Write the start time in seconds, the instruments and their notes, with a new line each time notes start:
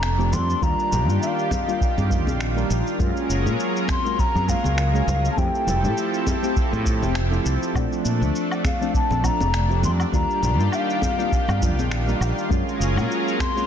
Already playing: fretless electric bass F1, analog synth pad A3 D4, flute A#5
0.03 finger snap, shaker
0.18 synth keys F3 A3 C4 G4, shaker
0.33 fretless electric bass F2, flute C6, low conga, shaker
0.50 shaker
0.61 fretless electric bass D#2, analog synth pad D#3 F4 G4, synth keys G3 A#3 D4 F4, flute A#5, kick, shaker
0.79 shaker
0.92 fretless electric bass A#1, low conga, shaker
1.08 fretless electric bass G2, synth keys G3 A#3 D4 F4, shaker
1.22 flute F5, shaker
1.39 shaker
1.51 kick, high conga, low conga, shaker
1.67 synth keys G3 A#3 D4 F4, shaker
1.81 kick, shaker
1.98 fretless electric bass G2, high conga, shaker
2.09 synth keys G3 A#3 D4 F4, kick, shaker
2.27 fretless electric bass A#1, high conga, shaker
2.40 finger snap, shaker
2.56 synth keys G3 A#3 D4 A#4, shaker
2.70 fretless electric bass A#1, shaker
2.87 shaker
2.99 fretless electric bass F#2, analog synth pad F#3 C#4 G#4 A#4, synth keys G#3 A#3 C#4 F4, kick, shaker
3.17 shaker
3.29 fretless electric bass F#1, shaker
3.45 fretless electric bass A#2, synth keys G#3 A#3 C#4 F4, shaker
3.60 shaker
3.77 shaker
3.88 flute C6, finger snap, kick, high conga, shaker
4.04 synth keys G#3 A#3 C#4 F4, shaker
4.19 flute A#5, kick, shaker
4.35 fretless electric bass F#2, high conga, shaker
4.47 synth keys G#3 A#3 C#4 F4, flute F5, kick, shaker
4.64 fretless electric bass C#2, high conga, shaker
4.78 finger snap, shaker
4.94 synth keys G#3 A#3 C#4 G#4, shaker
5.07 fretless electric bass C#2, low conga, shaker
5.25 shaker
5.32 flute A5
5.37 fretless electric bass F2, analog synth pad F3 C4 E4 G4 A4, synth keys A3 C4 E4 G4, flute G5, kick, shaker
5.55 shaker
5.67 fretless electric bass F1, low conga, shaker
5.83 fretless electric bass A2, synth keys A3 C4 E4 G4, shaker
5.97 shaker
6.14 shaker
6.27 kick, high conga, low conga, shaker
6.42 synth keys A3 C4 E4 G4, shaker
6.56 kick, shaker
6.73 fretless electric bass A2, high conga, shaker
6.86 kick, shaker
7.01 fretless electric bass F1, synth keys A3 C4 E4 G4, high conga, shaker
7.15 finger snap, shaker
7.31 synth keys A3 C4 E4 G4, shaker
7.46 fretless electric bass C2, shaker
7.63 shaker
7.74 fretless electric bass A#1, synth keys F3 A3 C4 D4, analog synth pad A3 D4, kick, low woodblock, shaker
7.93 shaker
8.05 fretless electric bass A#2, shaker
8.21 fretless electric bass D2, synth keys F3 A3 C4 D4, shaker
8.35 shaker
8.52 low woodblock, shaker
8.64 flute F5, finger snap, kick, high conga, shaker
8.80 synth keys F3 A3 C4 D4, shaker
8.94 flute A5, kick, shaker
9.10 fretless electric bass A#1, high conga, shaker
9.23 synth keys F3 A3 C4 D4, flute A#5, kick, low woodblock, shaker
9.41 fretless electric bass F1, high conga, shaker
9.54 finger snap, shaker
9.69 synth keys F3 A3 C4 G4, shaker
9.83 fretless electric bass F2, flute C6, low conga, shaker
10.00 low woodblock, shaker
10.12 fretless electric bass D#2, analog synth pad D#3 F4 G4, synth keys G3 A#3 D4 F4, flute A#5, kick, shaker
10.30 shaker
10.42 fretless electric bass A#1, low conga, shaker
10.58 fretless electric bass G2, synth keys G3 A#3 D4 F4, shaker
10.72 flute F5, low woodblock, shaker
10.90 shaker
11.02 kick, high conga, low conga, shaker
11.18 synth keys G3 A#3 D4 F4, shaker
11.32 kick, shaker
11.48 fretless electric bass G2, high conga, low woodblock, shaker
11.60 synth keys G3 A#3 D4 F4, kick, shaker
11.78 fretless electric bass A#1, high conga, shaker
11.91 finger snap, shaker
12.07 synth keys G3 A#3 D4 A#4, shaker
12.20 fretless electric bass A#1, low woodblock, shaker
12.38 shaker
12.49 fretless electric bass F#2, analog synth pad F#3 C#4 G#4 A#4, synth keys G#3 A#3 C#4 F4, kick, shaker
12.68 shaker
12.80 fretless electric bass F#1, shaker
12.96 fretless electric bass A#2, synth keys G#3 A#3 C#4 F4, low woodblock, shaker
13.11 shaker
13.28 shaker
13.40 flute C6, finger snap, kick, high conga, shaker
13.55 synth keys G#3 A#3 C#4 F4, shaker